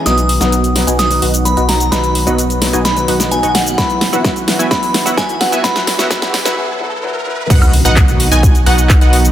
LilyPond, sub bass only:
\new Staff \with { instrumentName = "Sub bass" } { \clef bass \time 4/4 \key b \major \tempo 4 = 129 b,,8. b,,4 b,,8. b,,8. b,,8. | b,,8. b,,4 b,,8. b,,8. b,,8. | e,,8. e,,4 e,,16 e,,8. e,,4 e,,16 | e,,8. e,,16 e,,8. e,,16 r2 |
b,,8. b,,4 b,,8. b,,8. b,,8. | }